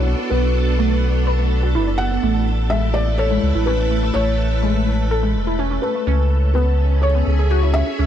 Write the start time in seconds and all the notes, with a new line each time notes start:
Already playing: B1 B3 D4 F#4 A4 C#5
0.07 B3
0.19 B3
0.30 B1 B3 B4
0.79 A3
1.27 B4
1.39 A3
1.63 F#4
1.75 F#1 E4
1.87 D4
1.98 B3 F#5
2.11 B3
2.23 A1 A3
2.33 E4 B4
2.70 G#3 E5
2.94 D5
3.18 A4 C#5
3.31 G#3
3.43 C#2
3.55 A1 E4
3.66 C#4 B4
3.79 C#4
3.91 A3
4.03 A3
4.14 A1 A3 C#5
4.63 G#3
5.11 A4
5.23 G#3
5.35 E1
5.47 E4
5.59 C#4
5.71 C#4
5.82 A3 B4
5.95 A3
6.07 C#2 C#4
6.31 E5
6.39 G#4
6.54 B3 B4
7.02 C#5
7.15 B3
7.27 C#2
7.39 G#4
7.51 F#4
7.63 E4
7.74 C#4 E5
7.87 C#4
7.99 C#2 C#4